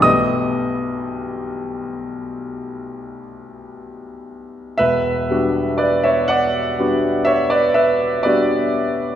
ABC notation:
X:1
M:9/8
L:1/16
Q:3/8=40
K:Bm
V:1 name="Grand piano"
[^d^d']12 z6 | [Be]4 [Bd] [ce] [df]4 [ce] [Bd] [Be]2 [Bd]4 |]
V:2 name="Grand piano"
[B,,,G,A,B,G]16- [B,,,G,A,B,G]2 | E,,,2 [G,B,DF]6 [G,B,DF]6 [G,B,DF]4 |]